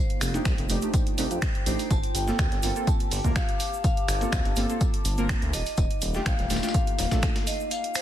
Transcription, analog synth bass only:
0, 0, Header, 1, 2, 480
1, 0, Start_track
1, 0, Tempo, 483871
1, 1890, Time_signature, 4, 2, 24, 8
1, 7954, End_track
2, 0, Start_track
2, 0, Title_t, "Analog synth bass"
2, 0, Program_c, 0, 38
2, 210, Note_on_c, 0, 29, 98
2, 369, Note_off_c, 0, 29, 0
2, 450, Note_on_c, 0, 36, 85
2, 532, Note_off_c, 0, 36, 0
2, 577, Note_on_c, 0, 29, 87
2, 649, Note_off_c, 0, 29, 0
2, 689, Note_on_c, 0, 29, 100
2, 771, Note_off_c, 0, 29, 0
2, 1170, Note_on_c, 0, 36, 97
2, 1252, Note_off_c, 0, 36, 0
2, 1298, Note_on_c, 0, 41, 85
2, 1369, Note_off_c, 0, 41, 0
2, 1650, Note_on_c, 0, 33, 104
2, 1732, Note_off_c, 0, 33, 0
2, 1891, Note_on_c, 0, 31, 105
2, 1972, Note_off_c, 0, 31, 0
2, 2129, Note_on_c, 0, 31, 100
2, 2289, Note_off_c, 0, 31, 0
2, 2370, Note_on_c, 0, 38, 85
2, 2452, Note_off_c, 0, 38, 0
2, 2498, Note_on_c, 0, 31, 85
2, 2569, Note_off_c, 0, 31, 0
2, 2609, Note_on_c, 0, 31, 91
2, 2691, Note_off_c, 0, 31, 0
2, 3090, Note_on_c, 0, 31, 102
2, 3172, Note_off_c, 0, 31, 0
2, 3219, Note_on_c, 0, 38, 83
2, 3290, Note_off_c, 0, 38, 0
2, 4050, Note_on_c, 0, 31, 94
2, 4209, Note_off_c, 0, 31, 0
2, 4290, Note_on_c, 0, 38, 85
2, 4372, Note_off_c, 0, 38, 0
2, 4417, Note_on_c, 0, 31, 87
2, 4489, Note_off_c, 0, 31, 0
2, 4530, Note_on_c, 0, 31, 97
2, 4612, Note_off_c, 0, 31, 0
2, 5010, Note_on_c, 0, 31, 82
2, 5304, Note_off_c, 0, 31, 0
2, 5379, Note_on_c, 0, 38, 99
2, 5490, Note_on_c, 0, 27, 105
2, 5505, Note_off_c, 0, 38, 0
2, 5572, Note_off_c, 0, 27, 0
2, 5730, Note_on_c, 0, 27, 106
2, 5812, Note_off_c, 0, 27, 0
2, 5969, Note_on_c, 0, 27, 94
2, 6129, Note_off_c, 0, 27, 0
2, 6210, Note_on_c, 0, 34, 89
2, 6292, Note_off_c, 0, 34, 0
2, 6338, Note_on_c, 0, 27, 86
2, 6409, Note_off_c, 0, 27, 0
2, 6451, Note_on_c, 0, 27, 95
2, 6532, Note_off_c, 0, 27, 0
2, 6930, Note_on_c, 0, 27, 97
2, 7012, Note_off_c, 0, 27, 0
2, 7059, Note_on_c, 0, 34, 85
2, 7130, Note_off_c, 0, 34, 0
2, 7954, End_track
0, 0, End_of_file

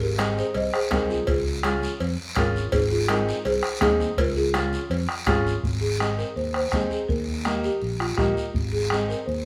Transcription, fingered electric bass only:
0, 0, Header, 1, 2, 480
1, 0, Start_track
1, 0, Key_signature, -4, "major"
1, 0, Tempo, 363636
1, 1690, Time_signature, 4, 2, 24, 8
1, 12474, End_track
2, 0, Start_track
2, 0, Title_t, "Fingered electric bass"
2, 0, Program_c, 0, 33
2, 0, Note_on_c, 0, 32, 100
2, 536, Note_off_c, 0, 32, 0
2, 724, Note_on_c, 0, 36, 97
2, 918, Note_off_c, 0, 36, 0
2, 1205, Note_on_c, 0, 36, 93
2, 1591, Note_off_c, 0, 36, 0
2, 1688, Note_on_c, 0, 37, 94
2, 2455, Note_off_c, 0, 37, 0
2, 2647, Note_on_c, 0, 41, 98
2, 2839, Note_off_c, 0, 41, 0
2, 3123, Note_on_c, 0, 32, 90
2, 3508, Note_off_c, 0, 32, 0
2, 3599, Note_on_c, 0, 32, 102
2, 4368, Note_off_c, 0, 32, 0
2, 4560, Note_on_c, 0, 36, 99
2, 4753, Note_off_c, 0, 36, 0
2, 5029, Note_on_c, 0, 39, 105
2, 5418, Note_off_c, 0, 39, 0
2, 5509, Note_on_c, 0, 37, 108
2, 6282, Note_off_c, 0, 37, 0
2, 6468, Note_on_c, 0, 41, 98
2, 6665, Note_off_c, 0, 41, 0
2, 6952, Note_on_c, 0, 32, 90
2, 7340, Note_off_c, 0, 32, 0
2, 7440, Note_on_c, 0, 32, 97
2, 8209, Note_off_c, 0, 32, 0
2, 8400, Note_on_c, 0, 39, 73
2, 8786, Note_off_c, 0, 39, 0
2, 8876, Note_on_c, 0, 39, 78
2, 9071, Note_off_c, 0, 39, 0
2, 9361, Note_on_c, 0, 39, 98
2, 10132, Note_off_c, 0, 39, 0
2, 10325, Note_on_c, 0, 34, 85
2, 10710, Note_off_c, 0, 34, 0
2, 10796, Note_on_c, 0, 34, 78
2, 10993, Note_off_c, 0, 34, 0
2, 11272, Note_on_c, 0, 32, 96
2, 12048, Note_off_c, 0, 32, 0
2, 12244, Note_on_c, 0, 39, 86
2, 12474, Note_off_c, 0, 39, 0
2, 12474, End_track
0, 0, End_of_file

